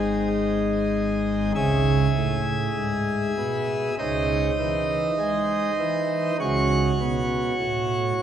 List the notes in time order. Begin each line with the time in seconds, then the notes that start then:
Already playing: G#1 G#2 G#3 C4 D#4 G#4
1.55 C#2 C#3 G#4 E5 G#5
2.16 A2
2.77 G#2
3.38 B2
3.99 C#2 C#3 D#4 C5 D#5
4.59 E3
5.19 G#3
5.79 E3
6.40 C#2 C#3 F#4 C#5 F#5
7.00 B2
7.60 A2